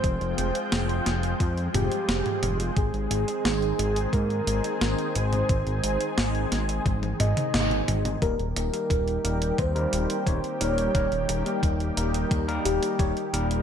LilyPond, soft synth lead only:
\new Staff \with { instrumentName = "Soft synth lead" } { \time 4/4 \key ees \mixolydian \tempo 4 = 88 c''4 r4. g'4. | aes'2 bes'4. c''8~ | c''4 r4. ees''4. | bes'2 c''4. des''8~ |
des''4 r4. g'4. | }